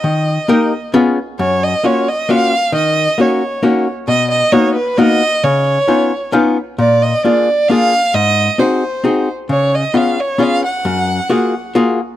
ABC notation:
X:1
M:3/4
L:1/8
Q:1/4=133
K:Eb
V:1 name="Violin"
e4 z2 | [K:F#] c d c d e2 | d2 c3 z | d d c B d2 |
c4 z2 | =d ^d =d2 e2 | d2 ^B3 z | c d e c e f- |
f4 z2 |]
V:2 name="Hollow-body jazz guitar"
E,2 [B,EGB] z [_C_DFA] z | [K:F#] F,,2 [A,CEF] z [A,CEF] z | D,2 [A,CDF] z [A,CDF] z | B,,2 [A,B,DF] z [A,B,DF] z |
C,2 [B,CDE] z [B,CDE] z | A,,2 [A,=DEG] z [A,DEG] z | G,,2 [^B,DFG] z [B,DFG] z | C,2 [B,CEG] z [B,CEG] z |
F,,2 [A,EFG] z [A,EFG] z |]